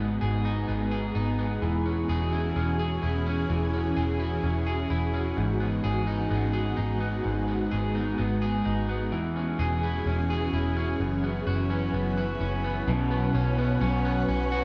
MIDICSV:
0, 0, Header, 1, 5, 480
1, 0, Start_track
1, 0, Key_signature, 4, "major"
1, 0, Tempo, 937500
1, 833, Time_signature, 4, 2, 24, 8
1, 7497, End_track
2, 0, Start_track
2, 0, Title_t, "Ambient pad"
2, 0, Program_c, 0, 92
2, 0, Note_on_c, 0, 56, 78
2, 0, Note_on_c, 0, 59, 73
2, 0, Note_on_c, 0, 68, 85
2, 811, Note_off_c, 0, 59, 0
2, 812, Note_off_c, 0, 56, 0
2, 831, Note_on_c, 0, 52, 79
2, 831, Note_on_c, 0, 61, 75
2, 831, Note_on_c, 0, 66, 73
2, 2732, Note_off_c, 0, 68, 0
2, 2733, Note_off_c, 0, 52, 0
2, 2733, Note_off_c, 0, 61, 0
2, 2751, Note_on_c, 0, 59, 73
2, 2752, Note_on_c, 0, 56, 76
2, 4653, Note_off_c, 0, 56, 0
2, 4653, Note_off_c, 0, 59, 0
2, 4676, Note_on_c, 0, 52, 80
2, 4677, Note_on_c, 0, 61, 69
2, 4677, Note_on_c, 0, 68, 84
2, 5611, Note_off_c, 0, 66, 0
2, 5625, Note_off_c, 0, 52, 0
2, 5625, Note_off_c, 0, 68, 0
2, 5634, Note_on_c, 0, 64, 74
2, 5634, Note_on_c, 0, 71, 86
2, 5635, Note_on_c, 0, 54, 73
2, 6576, Note_off_c, 0, 61, 0
2, 6584, Note_off_c, 0, 54, 0
2, 6584, Note_off_c, 0, 64, 0
2, 6584, Note_off_c, 0, 71, 0
2, 6595, Note_on_c, 0, 71, 87
2, 6595, Note_on_c, 0, 73, 76
2, 6595, Note_on_c, 0, 85, 93
2, 6596, Note_on_c, 0, 78, 81
2, 7497, Note_off_c, 0, 71, 0
2, 7497, Note_off_c, 0, 73, 0
2, 7497, Note_off_c, 0, 78, 0
2, 7497, Note_off_c, 0, 85, 0
2, 7497, End_track
3, 0, Start_track
3, 0, Title_t, "Clean electric guitar"
3, 0, Program_c, 1, 27
3, 0, Note_on_c, 1, 44, 76
3, 0, Note_on_c, 1, 59, 55
3, 0, Note_on_c, 1, 63, 52
3, 0, Note_on_c, 1, 68, 53
3, 106, Note_off_c, 1, 68, 0
3, 108, Note_on_c, 1, 68, 57
3, 225, Note_off_c, 1, 63, 0
3, 231, Note_on_c, 1, 63, 59
3, 348, Note_off_c, 1, 59, 0
3, 350, Note_on_c, 1, 59, 54
3, 466, Note_off_c, 1, 68, 0
3, 468, Note_on_c, 1, 68, 53
3, 583, Note_off_c, 1, 63, 0
3, 589, Note_on_c, 1, 63, 56
3, 708, Note_off_c, 1, 59, 0
3, 710, Note_on_c, 1, 59, 53
3, 830, Note_on_c, 1, 52, 77
3, 879, Note_off_c, 1, 44, 0
3, 879, Note_off_c, 1, 63, 0
3, 949, Note_off_c, 1, 59, 0
3, 951, Note_on_c, 1, 61, 52
3, 1069, Note_off_c, 1, 68, 0
3, 1071, Note_on_c, 1, 68, 62
3, 1192, Note_on_c, 1, 64, 55
3, 1309, Note_off_c, 1, 61, 0
3, 1311, Note_on_c, 1, 61, 57
3, 1428, Note_off_c, 1, 68, 0
3, 1430, Note_on_c, 1, 68, 53
3, 1545, Note_off_c, 1, 64, 0
3, 1551, Note_on_c, 1, 64, 52
3, 1670, Note_off_c, 1, 61, 0
3, 1672, Note_on_c, 1, 61, 58
3, 1784, Note_off_c, 1, 52, 0
3, 1790, Note_on_c, 1, 52, 69
3, 1910, Note_off_c, 1, 61, 0
3, 1912, Note_on_c, 1, 61, 53
3, 2028, Note_off_c, 1, 68, 0
3, 2030, Note_on_c, 1, 68, 58
3, 2142, Note_off_c, 1, 64, 0
3, 2149, Note_on_c, 1, 64, 58
3, 2268, Note_off_c, 1, 61, 0
3, 2270, Note_on_c, 1, 61, 54
3, 2386, Note_off_c, 1, 68, 0
3, 2388, Note_on_c, 1, 68, 56
3, 2504, Note_off_c, 1, 64, 0
3, 2510, Note_on_c, 1, 64, 57
3, 2629, Note_off_c, 1, 61, 0
3, 2631, Note_on_c, 1, 61, 53
3, 2750, Note_on_c, 1, 44, 72
3, 2799, Note_off_c, 1, 52, 0
3, 2799, Note_off_c, 1, 64, 0
3, 2866, Note_off_c, 1, 61, 0
3, 2868, Note_on_c, 1, 59, 48
3, 2986, Note_off_c, 1, 68, 0
3, 2988, Note_on_c, 1, 68, 64
3, 3109, Note_on_c, 1, 63, 55
3, 3226, Note_off_c, 1, 59, 0
3, 3228, Note_on_c, 1, 59, 56
3, 3343, Note_off_c, 1, 68, 0
3, 3345, Note_on_c, 1, 68, 55
3, 3459, Note_off_c, 1, 63, 0
3, 3465, Note_on_c, 1, 63, 52
3, 3584, Note_off_c, 1, 59, 0
3, 3586, Note_on_c, 1, 59, 55
3, 3702, Note_off_c, 1, 44, 0
3, 3708, Note_on_c, 1, 44, 76
3, 3827, Note_off_c, 1, 59, 0
3, 3829, Note_on_c, 1, 59, 50
3, 3948, Note_off_c, 1, 68, 0
3, 3950, Note_on_c, 1, 68, 56
3, 4064, Note_off_c, 1, 63, 0
3, 4070, Note_on_c, 1, 63, 57
3, 4185, Note_off_c, 1, 59, 0
3, 4187, Note_on_c, 1, 59, 55
3, 4308, Note_off_c, 1, 68, 0
3, 4310, Note_on_c, 1, 68, 61
3, 4424, Note_off_c, 1, 63, 0
3, 4430, Note_on_c, 1, 63, 53
3, 4548, Note_off_c, 1, 59, 0
3, 4550, Note_on_c, 1, 59, 51
3, 4670, Note_on_c, 1, 52, 73
3, 4718, Note_off_c, 1, 44, 0
3, 4719, Note_off_c, 1, 63, 0
3, 4719, Note_off_c, 1, 68, 0
3, 4790, Note_off_c, 1, 59, 0
3, 4792, Note_on_c, 1, 61, 50
3, 4911, Note_on_c, 1, 68, 63
3, 5034, Note_on_c, 1, 64, 53
3, 5153, Note_off_c, 1, 61, 0
3, 5155, Note_on_c, 1, 61, 56
3, 5269, Note_off_c, 1, 68, 0
3, 5275, Note_on_c, 1, 68, 55
3, 5392, Note_off_c, 1, 64, 0
3, 5394, Note_on_c, 1, 64, 56
3, 5511, Note_off_c, 1, 61, 0
3, 5513, Note_on_c, 1, 61, 57
3, 5633, Note_on_c, 1, 42, 72
3, 5679, Note_off_c, 1, 52, 0
3, 5681, Note_off_c, 1, 64, 0
3, 5682, Note_off_c, 1, 68, 0
3, 5751, Note_off_c, 1, 61, 0
3, 5753, Note_on_c, 1, 59, 52
3, 5872, Note_on_c, 1, 66, 59
3, 5991, Note_on_c, 1, 61, 58
3, 6112, Note_off_c, 1, 59, 0
3, 6114, Note_on_c, 1, 59, 52
3, 6232, Note_off_c, 1, 66, 0
3, 6234, Note_on_c, 1, 66, 52
3, 6350, Note_off_c, 1, 61, 0
3, 6352, Note_on_c, 1, 61, 60
3, 6471, Note_off_c, 1, 59, 0
3, 6473, Note_on_c, 1, 59, 49
3, 6593, Note_on_c, 1, 47, 84
3, 6641, Note_off_c, 1, 42, 0
3, 6710, Note_off_c, 1, 59, 0
3, 6712, Note_on_c, 1, 59, 61
3, 6727, Note_off_c, 1, 61, 0
3, 6833, Note_on_c, 1, 61, 65
3, 6953, Note_off_c, 1, 59, 0
3, 6955, Note_on_c, 1, 59, 61
3, 7069, Note_off_c, 1, 61, 0
3, 7071, Note_on_c, 1, 61, 61
3, 7191, Note_off_c, 1, 59, 0
3, 7193, Note_on_c, 1, 59, 57
3, 7311, Note_off_c, 1, 61, 0
3, 7314, Note_on_c, 1, 61, 61
3, 7432, Note_off_c, 1, 66, 0
3, 7434, Note_on_c, 1, 66, 70
3, 7497, Note_off_c, 1, 47, 0
3, 7497, Note_off_c, 1, 59, 0
3, 7497, Note_off_c, 1, 61, 0
3, 7497, Note_off_c, 1, 66, 0
3, 7497, End_track
4, 0, Start_track
4, 0, Title_t, "Clean electric guitar"
4, 0, Program_c, 2, 27
4, 6586, Note_on_c, 2, 47, 85
4, 6595, Note_on_c, 2, 54, 84
4, 6601, Note_on_c, 2, 59, 94
4, 6607, Note_on_c, 2, 61, 102
4, 7058, Note_off_c, 2, 47, 0
4, 7065, Note_on_c, 2, 47, 66
4, 7071, Note_off_c, 2, 54, 0
4, 7077, Note_on_c, 2, 54, 72
4, 7080, Note_off_c, 2, 61, 0
4, 7085, Note_off_c, 2, 59, 0
4, 7087, Note_on_c, 2, 59, 68
4, 7095, Note_on_c, 2, 61, 72
4, 7497, Note_off_c, 2, 47, 0
4, 7497, Note_off_c, 2, 54, 0
4, 7497, Note_off_c, 2, 59, 0
4, 7497, Note_off_c, 2, 61, 0
4, 7497, End_track
5, 0, Start_track
5, 0, Title_t, "Picked electric bass"
5, 0, Program_c, 3, 34
5, 0, Note_on_c, 3, 32, 92
5, 86, Note_off_c, 3, 32, 0
5, 114, Note_on_c, 3, 32, 78
5, 325, Note_off_c, 3, 32, 0
5, 354, Note_on_c, 3, 32, 88
5, 564, Note_off_c, 3, 32, 0
5, 593, Note_on_c, 3, 32, 81
5, 804, Note_off_c, 3, 32, 0
5, 831, Note_on_c, 3, 28, 96
5, 1043, Note_off_c, 3, 28, 0
5, 1071, Note_on_c, 3, 28, 85
5, 1283, Note_off_c, 3, 28, 0
5, 1312, Note_on_c, 3, 28, 76
5, 1523, Note_off_c, 3, 28, 0
5, 1554, Note_on_c, 3, 28, 87
5, 1765, Note_off_c, 3, 28, 0
5, 1792, Note_on_c, 3, 28, 91
5, 2004, Note_off_c, 3, 28, 0
5, 2032, Note_on_c, 3, 28, 87
5, 2244, Note_off_c, 3, 28, 0
5, 2271, Note_on_c, 3, 28, 91
5, 2483, Note_off_c, 3, 28, 0
5, 2512, Note_on_c, 3, 28, 84
5, 2724, Note_off_c, 3, 28, 0
5, 2753, Note_on_c, 3, 32, 100
5, 2964, Note_off_c, 3, 32, 0
5, 2994, Note_on_c, 3, 32, 82
5, 3204, Note_off_c, 3, 32, 0
5, 3232, Note_on_c, 3, 32, 77
5, 3443, Note_off_c, 3, 32, 0
5, 3474, Note_on_c, 3, 32, 85
5, 3684, Note_off_c, 3, 32, 0
5, 3715, Note_on_c, 3, 32, 93
5, 3925, Note_off_c, 3, 32, 0
5, 3956, Note_on_c, 3, 32, 79
5, 4166, Note_off_c, 3, 32, 0
5, 4196, Note_on_c, 3, 32, 91
5, 4406, Note_off_c, 3, 32, 0
5, 4436, Note_on_c, 3, 32, 89
5, 4675, Note_off_c, 3, 32, 0
5, 4675, Note_on_c, 3, 28, 95
5, 4885, Note_off_c, 3, 28, 0
5, 4912, Note_on_c, 3, 28, 80
5, 5123, Note_off_c, 3, 28, 0
5, 5151, Note_on_c, 3, 28, 83
5, 5363, Note_off_c, 3, 28, 0
5, 5392, Note_on_c, 3, 28, 90
5, 5604, Note_off_c, 3, 28, 0
5, 5633, Note_on_c, 3, 30, 89
5, 5844, Note_off_c, 3, 30, 0
5, 5872, Note_on_c, 3, 30, 87
5, 6084, Note_off_c, 3, 30, 0
5, 6112, Note_on_c, 3, 30, 86
5, 6324, Note_off_c, 3, 30, 0
5, 6352, Note_on_c, 3, 30, 89
5, 6564, Note_off_c, 3, 30, 0
5, 6592, Note_on_c, 3, 35, 96
5, 6803, Note_off_c, 3, 35, 0
5, 6833, Note_on_c, 3, 35, 103
5, 7044, Note_off_c, 3, 35, 0
5, 7073, Note_on_c, 3, 35, 99
5, 7284, Note_off_c, 3, 35, 0
5, 7316, Note_on_c, 3, 35, 97
5, 7497, Note_off_c, 3, 35, 0
5, 7497, End_track
0, 0, End_of_file